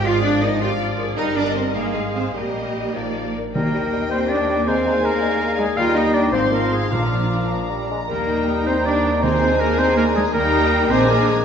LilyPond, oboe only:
\new Staff \with { instrumentName = "Oboe" } { \time 6/8 \key ees \major \tempo 4. = 106 r2. | r2. | r2. | bes'4. c''8 d''4 |
c''4 bes'4. aes'8 | f''8 ees''8 d''8 c''8 bes'8 aes'8 | f'4. r4. | bes'4. c''8 d''4 |
c''4 bes'8 c''8 bes'8 aes'8 | bes'4. c''8 bes'8 aes'8 | }